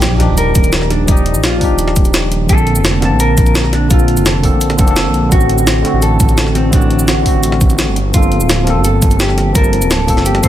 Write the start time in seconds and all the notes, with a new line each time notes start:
Already playing: A#1 F3 D4 D#4 G4, impact
0.02 snare, closed hi-hat, cabasa
0.17 F3 D4 D#4, snare, closed hi-hat
0.23 G4
0.29 D#1
0.38 A#4, closed hi-hat, cabasa
0.55 D#1, kick, closed hi-hat, cabasa
0.64 closed hi-hat, cabasa
0.73 snare, closed hi-hat, cabasa
0.82 D#1, snare
0.90 D4, snare, closed hi-hat
1.06 D#1 F3 D#4 D5, kick, closed hi-hat, cabasa
1.11 G4
1.17 cabasa
1.26 closed hi-hat
1.35 A#1, cabasa
1.44 F4, snare, closed hi-hat, cabasa
1.58 F3 D4 D#4, kick, open hi-hat
1.64 G4
1.70 D#1
1.79 closed hi-hat, cabasa
1.88 snare
1.96 D#1, kick, closed hi-hat, cabasa
2.05 closed hi-hat, cabasa
2.14 snare, closed hi-hat, cabasa
2.23 D#1
2.32 closed hi-hat
2.47 A#1 D3 A#3 C4 A4, kick, closed hi-hat, cabasa
2.52 A4
2.58 cabasa
2.67 closed hi-hat
2.76 F1, cabasa
2.85 snare, closed hi-hat, cabasa
3.00 D3 A#3 C4, snare, closed hi-hat
3.05 A5
3.11 A#1
3.20 A#4, closed hi-hat, cabasa
3.38 A#1, kick, closed hi-hat, cabasa
3.46 closed hi-hat, cabasa
3.55 snare, closed hi-hat, cabasa
3.64 A#1, snare
3.73 D4, snare, closed hi-hat
3.88 A#1 D3 A#3 C4 F4, kick, closed hi-hat, cabasa
3.94 A4
3.99 cabasa
4.08 closed hi-hat
4.17 F1, closed hi-hat, cabasa
4.26 A4, snare, closed hi-hat, cabasa
4.42 D3 A#3 C4 A4, kick, open hi-hat
4.52 A#1
4.61 closed hi-hat, cabasa
4.70 snare, closed hi-hat
4.78 F1 D3 A#3 C4 A4, kick, closed hi-hat, cabasa
4.85 D3 A#3 C4, closed hi-hat, cabasa
4.91 A4
4.96 snare, closed hi-hat, cabasa
5.05 A#1
5.14 closed hi-hat
5.29 A1 D3 A3 C4 F#4, kick, closed hi-hat, cabasa
5.35 F#4
5.41 cabasa
5.49 closed hi-hat
5.58 A1, cabasa
5.67 snare, closed hi-hat, cabasa
5.82 D3 A3 C4, snare, closed hi-hat
5.88 F#4
5.93 A1
6.02 A4, closed hi-hat, cabasa
6.20 A1, kick, closed hi-hat, cabasa
6.29 closed hi-hat, cabasa
6.38 snare, closed hi-hat, cabasa
6.46 A1, snare
6.55 C4, snare, closed hi-hat
6.70 A1 D3 A3 C4 D4, kick, closed hi-hat, cabasa
6.76 F#4
6.82 cabasa
6.90 closed hi-hat
6.99 A1, cabasa
7.08 F#4, snare, closed hi-hat, cabasa
7.23 D3 A3 C4, kick, open hi-hat
7.29 F#4
7.34 A1
7.43 closed hi-hat, cabasa
7.52 snare
7.61 A1, kick, closed hi-hat, cabasa
7.70 closed hi-hat, cabasa
7.79 snare, closed hi-hat, cabasa
7.88 G1
7.96 closed hi-hat
8.11 G1 F3 A#3 C4 F4, kick, closed hi-hat, cabasa
8.17 A4
8.23 cabasa
8.32 closed hi-hat
8.41 D1, cabasa
8.49 snare, closed hi-hat, cabasa
8.64 F3 A#3 C4, snare, closed hi-hat
8.70 A4
8.76 G1
8.85 A4, closed hi-hat, cabasa
9.02 G1, kick, closed hi-hat, cabasa
9.11 closed hi-hat, cabasa
9.20 G4, snare, closed hi-hat, cabasa
9.29 G1, snare
9.38 snare, closed hi-hat
9.52 G1 F3 A#3 C4 A#4, kick, closed hi-hat, cabasa
9.58 A5
9.64 cabasa
9.73 closed hi-hat
9.82 D1, closed hi-hat, cabasa
9.90 A4, snare, closed hi-hat, cabasa
10.07 F3 A#3 C4 A4, kick, open hi-hat, cabasa
10.17 G1, snare
10.26 G4, closed hi-hat, cabasa
10.35 snare, closed hi-hat
10.42 G1 F3 A#3 C4 A4 C5, kick, closed hi-hat, cabasa